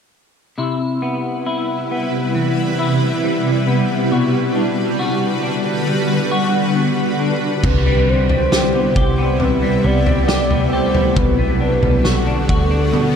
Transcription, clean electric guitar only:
0.58 4.11 C3 medium
0.58 1.45 E4 soft
1.02 1.91 B3 soft
1.46 2.78 E4 soft
1.91 3.67 B3 soft
2.35 4.20 E3 soft
2.79 4.11 E4 medium
3.23 5.02 G3 soft
3.67 4.55 B3 soft
4.12 7.63 B2 medium
4.12 4.98 F#4 medium
4.55 5.42 D4 soft
4.99 6.30 F#4 medium
5.43 7.18 D4 medium
5.87 7.86 G3 medium
6.31 7.73 F#4 medium
6.76 7.86 B3 soft
7.20 7.72 D4 soft
7.64 9.39 C3 medium
7.86 8.30 G3 medium
8.30 9.62 G3 medium
8.52 8.96 G4 medium
8.74 9.18 B3 medium
8.96 10.28 G4 medium
9.18 9.84 B3 soft
9.40 11.16 C3 medium
9.62 10.05 G3 medium
9.84 10.50 B3 medium
10.06 11.38 G3 medium
10.28 10.72 G4 medium
10.50 10.94 B3 soft
10.73 12.04 G4 medium
10.94 11.38 B3 medium
11.16 12.91 B2 medium
11.38 11.81 B3 medium
11.61 12.26 D4 medium
11.83 13.14 B3 soft
12.04 12.48 F#4 medium
12.27 12.70 D4 medium
12.49 13.16 F#4 medium
12.71 13.16 D4 medium
12.93 13.16 B2 medium

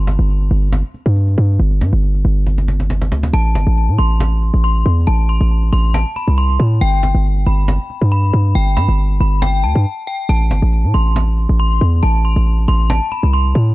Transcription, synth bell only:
3.34 3.95 A5 loud
3.98 4.60 C6 medium
4.64 5.05 C6 medium
5.07 5.25 A5 medium
5.29 5.70 C6 medium
5.73 5.90 C6 medium
5.94 6.12 A5 medium
6.16 6.34 B5 medium
6.38 6.79 C6 medium
6.81 7.43 G5 loud
7.47 8.08 B5 medium
8.12 8.53 B5 medium
8.55 8.73 G5 medium
8.77 9.18 B5 medium
9.21 9.38 B5 medium
9.42 9.60 G5 medium
9.64 10.05 A5 medium
10.07 10.25 G5 medium
10.29 10.91 A5 loud
10.94 11.56 C6 medium
11.60 12.00 C6 medium
12.03 12.20 A5 medium
12.25 12.66 C6 medium
12.68 12.86 C6 medium
12.90 13.07 A5 medium
13.12 13.29 B5 medium
13.33 13.74 C6 medium

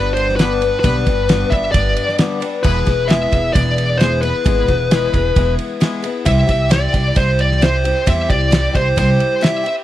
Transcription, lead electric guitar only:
0.00 0.14 B4 loud
0.14 0.36 C5 medium
0.36 0.79 B4 medium
0.80 1.52 B4 medium
1.50 1.71 E5 medium
1.72 2.15 D5 medium
2.63 3.11 B4 medium
3.08 3.53 E5 medium
3.53 4.01 D5 loud
3.98 4.20 C5 medium
4.22 5.54 B4 medium
6.26 6.71 E5 loud
6.72 7.18 D5 medium
7.16 7.40 C5 loud
7.40 7.63 D5 medium
7.62 8.09 C5 medium
8.07 8.30 E5 loud
8.30 8.76 D5 medium
8.75 8.97 C5 medium
8.99 9.44 C5 medium
9.43 9.74 E5 medium

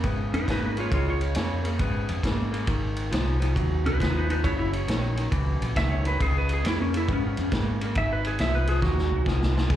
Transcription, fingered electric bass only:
0.04 0.32 G#2 loud
0.33 0.47 F2 medium
0.48 0.91 G#2 loud
0.92 1.35 C#2 medium
1.36 1.79 F2 loud
1.80 2.08 G#2 medium
2.09 2.23 F2 medium
2.24 2.67 G#2 loud
2.68 3.11 G#1 medium
3.13 3.55 C2 medium
3.56 3.84 D#2 loud
3.86 4.00 C2 medium
4.00 4.43 D#2 loud
4.45 4.87 F#1 medium
4.87 5.30 A#1 medium
5.32 5.60 C#2 loud
5.61 5.76 A#1 medium
5.76 6.19 C#2 loud
6.21 6.63 C#2 medium
6.65 7.07 F2 medium
7.09 7.36 G#2 loud
7.38 7.52 F2 medium
7.52 7.95 G#2 loud
7.96 8.38 G#1 medium
8.39 8.82 C2 medium
8.83 9.11 D#2 loud
9.12 9.26 C2 medium
9.26 9.69 C2 loud
9.70 9.76 C#2 medium

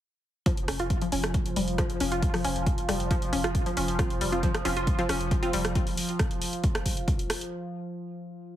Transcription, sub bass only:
0.57 0.67 F1 medium
0.68 0.79 F1 medium
0.80 0.90 F1 medium
1.01 1.11 F1 medium
1.12 1.23 F1 medium
1.23 1.34 F1 medium
1.45 1.55 F1 medium
1.56 1.67 F1 loud
1.67 1.78 F1 medium
1.90 2.00 F1 medium
2.00 2.11 F1 medium
2.12 2.22 F1 medium
2.34 2.44 F1 medium
2.44 2.55 F1 loud
2.56 2.66 F1 medium
2.78 2.88 F1 medium
2.89 2.99 F1 loud
3.00 3.10 F1 medium
3.22 3.32 F1 medium
3.33 3.43 F1 loud
3.44 3.54 F1 medium
3.66 3.76 F1 medium
3.77 3.87 F1 loud
3.88 3.99 F1 medium
4.10 4.20 F1 medium
4.21 4.32 F1 loud
4.32 4.43 F1 medium
4.54 4.64 F1 medium
4.65 4.76 F1 loud
4.76 4.87 F1 medium
4.98 5.08 F1 medium
5.09 5.20 F1 loud
5.21 5.31 F1 medium
5.43 5.53 F1 medium
5.53 5.64 F1 loud
5.65 5.75 F1 medium

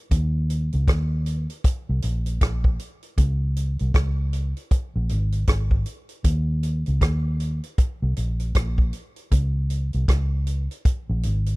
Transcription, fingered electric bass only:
0.12 0.69 D#2 loud
0.74 0.87 C#2 medium
0.88 1.46 D#2 medium
1.89 2.02 C2 medium
2.04 2.39 A#1 medium
2.42 2.77 A#1 medium
3.18 3.76 C#2 loud
3.81 3.94 C2 medium
3.95 4.52 C#2 medium
4.96 5.09 A#1 medium
5.11 5.46 G#1 medium
5.48 5.83 G#1 medium
6.25 6.83 D#2 loud
6.88 7.01 C#2 medium
7.02 7.59 D#2 medium
8.02 8.16 C2 medium
8.18 8.52 A#1 medium
8.56 8.91 A#1 medium
9.32 9.90 C#2 medium
9.94 10.08 C2 medium
10.09 10.66 C#2 medium
11.09 11.23 A#1 medium
11.25 11.56 G#1 medium

